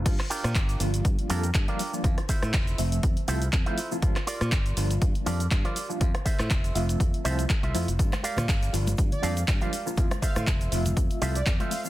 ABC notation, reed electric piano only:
X:1
M:4/4
L:1/16
Q:"Swing 16ths" 1/4=121
K:Gdor
V:1 name="Reed electric piano"
[F,G,B,DF] z4 z [F,G,B,DF]4 [F,G,B,DA] z2 [F,G,B,DF] z [F,G,B,DF] | [F,A,CEF] z4 z [F,A,Ce]4 [F,A,CEF] z2 [F,A,CEF] z [F,A,CEF] | [F,G,B,DF] z4 z [F,G,B,DF]4 [F,G,B,DA] z2 [F,G,B,DF] z [F,G,B,DF] | [F,A,CEF] z4 z [F,A,CFe]4 [F,A,CEF]2 z2 [F,A,CEF] z |
[F,G,B,DF] z4 z [F,G,B,DF]4 [F,G,B,DA] z2 [F,G,B,DF] z [F,G,B,DF] | [F,A,CEF] z4 z [F,A,CFe]4 [F,A,CEF] z2 [F,A,CEF] z [F,A,CEF] |]